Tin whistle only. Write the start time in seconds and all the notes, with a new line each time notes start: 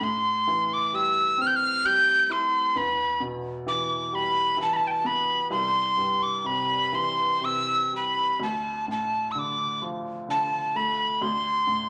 0.03 C6
0.73 D6
0.95 E6
1.41 F6
1.47 G6
1.56 F6
1.86 G6
2.32 C6
2.77 B5
3.68 D6
4.15 B5
4.62 A5
4.73 A5 B5
4.87 G5 A5
5.06 B5
5.51 C6
6.23 D6
6.46 B5
6.95 C6
7.45 E6
7.96 B5
8.43 A5
8.91 A5
9.31 E6
9.39 D6
10.30 A5
10.76 B5
11.22 C6